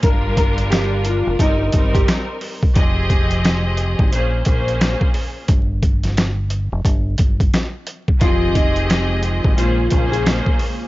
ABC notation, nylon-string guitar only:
X:1
M:4/4
L:1/16
Q:"Swing 16ths" 1/4=88
K:Fm
V:1 name="Nylon-string guitar"
B2 B2 G2 F2 E3 G z4 | z16 | z16 | F2 E6 F3 A z4 |]